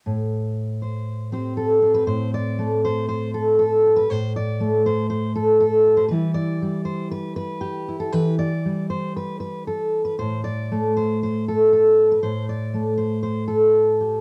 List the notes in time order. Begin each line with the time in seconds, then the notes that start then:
0.06 A2
0.82 C5
1.32 C4 G4 C5
1.57 A4
1.82 C4
1.94 B4
2.07 A2 C5
2.34 D5
2.59 A3
2.85 C5
3.09 C5
3.34 A4
3.59 A4
3.86 G4
3.96 B4
4.10 A2 C5
4.36 D5
4.60 A3
4.86 C5
5.10 C5
5.35 A4
5.60 A4
5.86 G4
5.97 C5
6.08 E3 G3 B4
6.12 E4 G4
6.34 D5
6.62 G3
6.85 C5
7.11 B4
7.36 B4
7.61 G4
7.88 E4
8.00 A4
8.12 E3 B4
8.39 D5
8.65 G3
8.90 C5
9.16 B4
9.40 B4
9.67 A4
10.05 B4
10.19 A2 C5
10.44 D5
10.72 A3
10.97 C5
11.23 C5
11.48 A4
11.73 A4
12.12 B4
12.23 A2 C5
12.49 D5
12.74 A3
12.98 C5
13.23 C5
13.48 A4
14.01 G4